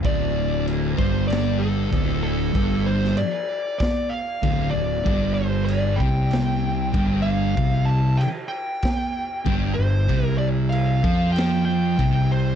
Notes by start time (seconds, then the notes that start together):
0.03 D1 D2 D5, kick, crash
0.68 crash
0.97 G1 G2 C5, kick
1.28 D5, crash
1.33 snare
1.59 A4
1.92 D1 D2, kick, crash
2.23 A4
2.55 G1 G2, kick, crash
2.86 C5
3.04 snare
3.17 D5, crash
3.79 D5, kick, snare, crash
4.09 F5
4.43 D1 D2, kick, crash
4.71 D2 D5
4.75 D1
5.05 G1 G2, kick, crash
5.34 C5
5.65 D5, crash
5.96 C3 G5
6.00 C2, kick
6.31 snare, crash
6.93 G1 G2, kick, crash
7.22 F5
7.56 C2 C3, kick, crash
7.86 A5
8.17 G5, crash
8.48 G5
8.82 kick, snare, crash
9.45 G1 G2, kick, crash
9.74 G2 C5
9.79 G1
10.08 C2 C3, kick, crash
10.25 A#4
10.38 D5
10.70 F5, crash
11.02 F2 F3, kick
11.32 G5, crash
11.39 snare
11.65 G5
11.98 C2 C3, kick, crash
12.32 C5